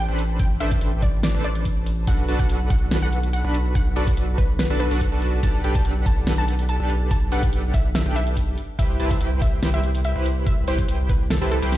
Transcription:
Already playing: G5
0.09 A1 D4 A4 B4 C5 B5
0.18 closed hi-hat
0.39 G5, kick, closed hi-hat
0.60 A1 D4 A4 B4 C5 E5 G5, closed hi-hat
0.71 kick, closed hi-hat
0.81 A1 D4 A4 B4 C5 G5, closed hi-hat
1.02 D5, kick, closed hi-hat
1.23 D5, snare, closed hi-hat
1.35 A1 D4 A4 B4 C5 A5
1.44 D5, closed hi-hat
1.55 closed hi-hat
1.65 kick, closed hi-hat
1.86 closed hi-hat
2.07 B1 D4 F#4 A4 B4 F#5, kick, closed hi-hat
2.28 B1 D4 F#4 A4 B4 A5, closed hi-hat
2.39 F#5, kick, closed hi-hat
2.49 B1 D4 F#4 A4 B4 F#5, closed hi-hat
2.70 F#5, kick, closed hi-hat
2.91 B1 D4 F#4 A4 B4 F#5, snare, closed hi-hat
3.02 F#5
3.12 closed hi-hat
3.23 closed hi-hat
3.33 F#5, closed hi-hat
3.44 B1 D4 F#4 A4 B4 B5
3.54 closed hi-hat
3.75 F#5, kick, closed hi-hat
3.96 B1 D4 F#4 A4 B4 D5 F#5, closed hi-hat
4.07 kick, closed hi-hat
4.17 B1 D4 F#4 A4 B4 F#5, closed hi-hat
4.38 B4, kick, closed hi-hat
4.59 B4, snare, closed hi-hat
4.70 B1 D4 F#4 A4 B4 A5
4.80 B4, closed hi-hat
4.91 B1 D4 F#4 A4 B4 F#5, closed hi-hat
5.01 kick, closed hi-hat
5.12 B1 D4 F#4 A4 B4 A5
5.22 closed hi-hat
5.43 B1 D4 G4 A4 B4 F#5 A5, kick, closed hi-hat
5.64 B1 D4 G4 A4 B4 G5, closed hi-hat
5.75 A5, kick, closed hi-hat
5.85 B1 D4 G4 A4 B4 F#5, closed hi-hat
6.06 A5, kick, closed hi-hat
6.27 B1 D4 G4 A4 B4 F#5, snare, closed hi-hat
6.38 A5
6.48 closed hi-hat
6.59 closed hi-hat
6.69 A5, closed hi-hat
6.80 B1 D4 G4 A4 B4 A5
6.90 closed hi-hat
7.11 A5, kick, closed hi-hat
7.32 B1 D4 G4 A4 B4 F#5, closed hi-hat
7.43 kick, closed hi-hat
7.53 B1 D4 G4 A4 B4 F#5, closed hi-hat
7.74 E5, kick, closed hi-hat
7.95 E5, snare, closed hi-hat
8.06 B1 D4 G4 A4 B4 G5
8.16 E5, closed hi-hat
8.27 closed hi-hat
8.37 kick, closed hi-hat
8.58 closed hi-hat
8.79 C2 E4 G4 B4 C5 E5 G5, kick, closed hi-hat
9.00 C2 E4 G4 B4 C5 A5, closed hi-hat
9.11 E5, kick, closed hi-hat
9.21 C2 E4 G4 B4 C5 G5, closed hi-hat
9.42 E5, kick, closed hi-hat
9.63 C2 E4 G4 B4 C5 G5, snare, closed hi-hat
9.74 E5
9.84 closed hi-hat
9.95 closed hi-hat
10.05 E5, closed hi-hat
10.16 C2 E4 G4 B4 C5 B5
10.26 closed hi-hat
10.46 E5, kick, closed hi-hat
10.68 C2 E4 G4 B4 C5 G5, closed hi-hat
10.79 kick, closed hi-hat
10.88 C2 E4 G4 B4 C5 G5, closed hi-hat
11.09 B4, kick, closed hi-hat
11.30 A4, snare, closed hi-hat
11.41 C2 E4 G4 B4 C5 A5
11.51 A4, closed hi-hat
11.62 C2 E4 G4 B4 C5 G5, closed hi-hat
11.72 snare, closed hi-hat

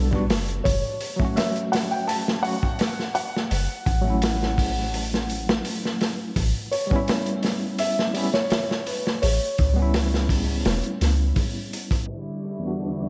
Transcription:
Already playing: B1 B4
0.11 G3 B3 D4, kick
0.16 F#4
0.30 F#1, snare, open hi-hat
0.48 closed hi-hat
0.64 F#1 C#5, kick, open hi-hat
1.00 open hi-hat
1.16 F#3 A3, kick
1.22 C#4 F#4
1.36 E5, snare, open hi-hat
1.56 closed hi-hat
1.72 F#5, snare, open hi-hat
1.91 G5
2.07 A5, open hi-hat
2.28 snare
2.42 F#3 A3 C#4 F#5, open hi-hat
2.47 F#4
2.63 kick
2.79 snare, open hi-hat
2.99 snare
3.15 F#5, open hi-hat
3.36 snare
3.51 F#1, open hi-hat
3.86 A1, kick, open hi-hat
4.01 F#3 A3
4.07 C#4 E4
4.22 snare, open hi-hat
4.43 snare
4.58 kick, open hi-hat
4.94 open hi-hat
5.14 snare
5.30 open hi-hat
5.49 snare
5.65 open hi-hat
5.85 snare
6.01 snare, open hi-hat
6.36 A1, kick, open hi-hat
6.71 C#5, open hi-hat
6.87 G3 B3
6.91 C#4, kick
6.96 E4
7.08 snare, open hi-hat
7.26 closed hi-hat
7.43 snare, open hi-hat
7.79 E5, open hi-hat
7.99 snare
8.14 G3 B3 C#4, open hi-hat
8.18 E4
8.34 C#5, snare
8.50 snare, open hi-hat
8.71 snare
8.87 B4, open hi-hat
9.07 snare
9.22 A1 C#5, open hi-hat
9.58 C#2, kick, open hi-hat
9.74 G3 B3
9.79 C#4 E4
9.94 snare, open hi-hat
10.14 snare
10.29 kick, open hi-hat
10.65 E1, snare, open hi-hat
10.83 closed hi-hat
11.01 C#2, snare, open hi-hat
11.36 kick, open hi-hat
11.73 open hi-hat
11.91 kick, open hi-hat
12.08 D3 G3 D4 E4 C#6, open hi-hat
12.44 open hi-hat
12.59 E2 G3
12.63 B3 D4 F#4
12.80 open hi-hat
12.98 closed hi-hat

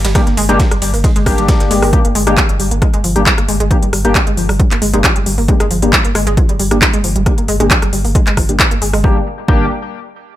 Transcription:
0.05 G1 G3, snare, closed hi-hat, ride
0.15 G3 A#3 D4 G4, kick, cross-stick, snare, closed hi-hat, ride
0.27 G1 A#3, snare, closed hi-hat
0.37 G1 G#3, open hi-hat, ride
0.49 G1 G#3 A#3 D4 G4, closed hi-hat
0.60 G3, kick, snare, closed hi-hat, ride
0.71 G1 G3, cross-stick, closed hi-hat
0.82 G1 G3, open hi-hat, ride
0.94 G1 A#3, open hi-hat
1.04 G#3, kick, closed hi-hat, ride
1.16 G1 G#3, closed hi-hat, ride
1.26 G1 G3 A#3 D4 G4, kick, cross-stick, open hi-hat, ride
1.38 G1 G3, closed hi-hat, ride
1.48 G3, kick, snare, closed hi-hat, ride
1.60 G1 A#3, snare, closed hi-hat
1.71 G1 G#3, open hi-hat, ride
1.82 G1 G#3, cross-stick, open hi-hat
1.93 G3 A#3 D4 G4, kick, closed hi-hat
2.05 G1 A#3, closed hi-hat
2.15 G1 G#3, open hi-hat
2.27 G1 G#3 A#3 D4 G4, cross-stick, closed hi-hat
2.37 F3, kick, clap, closed hi-hat
2.49 G1 G3, closed hi-hat
2.60 G1 G3, open hi-hat
2.71 G1 A#3, closed hi-hat
2.82 G#3, kick, cross-stick, closed hi-hat
2.94 G1 G#3, closed hi-hat
3.04 G1 F3, open hi-hat
3.16 G1 G3 A#3 D4 G4, closed hi-hat
3.26 G3, kick, clap, closed hi-hat
3.38 G1 A#3, cross-stick, closed hi-hat
3.48 G1 G#3, open hi-hat
3.60 G1 G#3, closed hi-hat
3.71 F3 A#3 D4 G4, kick, closed hi-hat
3.82 G1 G3, closed hi-hat
3.93 G1 G3, cross-stick, open hi-hat
4.05 G1 A#3 D4 G4, closed hi-hat
4.15 G#3, kick, clap, closed hi-hat
4.27 G1 G#3, closed hi-hat
4.37 G1 F3, open hi-hat
4.49 G1 G3, cross-stick, open hi-hat
4.60 G3, kick, closed hi-hat
4.71 G1 A#3, clap, closed hi-hat
4.82 G1 G#3, open hi-hat
4.93 G1 G#3 A#3 D4 G4, closed hi-hat
5.04 F3, kick, cross-stick, clap, closed hi-hat
5.16 G1 G3, closed hi-hat
5.26 G1 G3, open hi-hat
5.38 G1 A#3, open hi-hat
5.48 G#3 A#3 D4 G4, kick, closed hi-hat
5.60 G1 G#3, cross-stick, closed hi-hat
5.71 G1 F3, open hi-hat
5.82 G1 G3 A#3 D4 G4, closed hi-hat
5.93 G3, kick, clap, closed hi-hat
6.05 G1 A#3, closed hi-hat
6.15 G1 G#3, cross-stick, open hi-hat
6.27 G1 G#3, closed hi-hat
6.37 F3, kick, closed hi-hat
6.49 G1 G3, closed hi-hat
6.59 G1 G3, open hi-hat
6.71 G1 A#3 D4 G4, cross-stick, closed hi-hat
6.82 G#3, kick, clap, closed hi-hat
6.93 G1 G#3, closed hi-hat
7.04 G1 F3, open hi-hat
7.16 G1 G3, closed hi-hat
7.26 G3 A#3 D4 G4, kick, cross-stick, closed hi-hat
7.38 G1 A#3, closed hi-hat
7.48 G1 G#3, open hi-hat
7.60 G1 G#3 A#3 D4 G4, closed hi-hat
7.71 F3, kick, clap, closed hi-hat
7.82 G1 G3, cross-stick, closed hi-hat
7.93 G1 G3, open hi-hat
8.05 G1 A#3, open hi-hat
8.15 G#3, kick, closed hi-hat
8.27 G1 G#3, clap, closed hi-hat
8.37 G1 F3, kick, cross-stick, open hi-hat
8.49 G1 G3 A#3 D4 G4, closed hi-hat
8.60 G3, kick, clap, closed hi-hat
8.71 G1 A#3, closed hi-hat
8.82 G1 G#3, open hi-hat
8.93 G1 G#3, cross-stick, open hi-hat
9.04 G1 G3 A#3 D4 G4, kick
9.48 G1 G3 A#3 D4 G4, kick

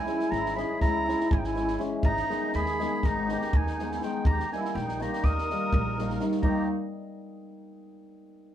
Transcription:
Already playing: E4 G#5
0.05 E3 G#3 C#4 E4, snare
0.19 snare
0.31 G#1 E4 A#5, snare
0.46 snare
0.55 E3 G#3 C#4 E4 G#4 B5, snare
0.81 C#2 E4 A#5, kick, snare
1.06 E3 G#3 C#4 E4, snare
1.20 snare
1.31 G#1 E4 G#5, kick
1.38 D#4 G5
1.44 E4 G#5, snare
1.55 E3 G#3 C#4 E4, snare
1.68 snare
1.78 E3 G#3 C#4 E4, snare
2.03 G#1 D#4 A#5, kick
2.17 snare
2.28 D#3 G#3 B3 D#4, snare
2.53 D#2 B5, snare
2.57 G#4
2.66 snare
2.79 D#3 G#3 B3 D#4, snare
3.03 G#1 A#5, kick, snare
3.07 D#4
3.29 D#3 G#3 B3 D#4 A#5, snare
3.33 G4
3.41 snare
3.53 D#2 G#5, kick
3.58 D#4
3.67 snare
3.79 D#3 G#3 B3 D#4, snare
3.92 G#5, snare
3.96 E4
4.02 D#3 G#3 B3 D#4 G5, snare
4.07 D#4
4.25 D#2 A#5, kick
4.29 G4
4.40 snare
4.52 D#3 G3 A#3 D#4 E4 G#5, snare
4.65 snare
4.75 A#1 G5, snare
4.80 D#4
4.89 snare
5.00 D#3 G3 A#3 D#4 A#5, snare
5.06 G4
5.13 snare
5.24 D#2 A#4 D#6, kick, snare
5.38 snare
5.50 D#3 G3 A#3 D#4, snare
5.73 A#1, kick
5.98 D#3 G3 A#3 D#4, snare
6.10 snare
6.20 D#3 G3 A#3 D#4, snare
6.32 snare
6.42 D#2 D#3 G3 A#3 D#4 G4 A#5, kick

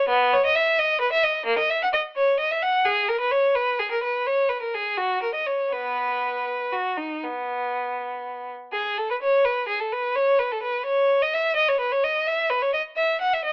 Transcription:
0.09 B3
0.33 C#5
0.46 D#5
0.55 E5
0.79 D#5
1.01 B4
1.13 E5
1.23 D#5
1.46 A#3
1.59 D#5
1.70 E5
1.83 F#5
1.93 D#5
2.16 C#5
2.40 D#5
2.51 E5
2.63 F#5
2.85 G#4
3.08 A#4
3.21 B4
3.32 C#5
3.55 B4
3.79 G#4
3.91 A#4
4.04 B4
4.27 C#5
4.49 B4
4.62 A#4
4.74 G#4
4.98 F#4
5.23 A#4
5.35 D#5
5.47 C#5
5.72 B3 B4
6.72 F#4
6.98 D#4
7.24 B3
8.73 G#4
8.98 A4
9.11 B4
9.22 C#5
9.45 B4
9.68 G#4
9.80 A4
9.92 B4
10.16 C#5
10.39 B4
10.52 A4
10.63 B4
10.86 C#5
11.22 D#5
11.34 E5
11.56 D#5
11.68 C#5
11.80 B4
11.92 C#5
12.04 D#5
12.27 E5
12.50 B4
12.62 C#5
12.73 D#5
12.97 E5
13.21 F#5
13.34 E5
13.45 D#5

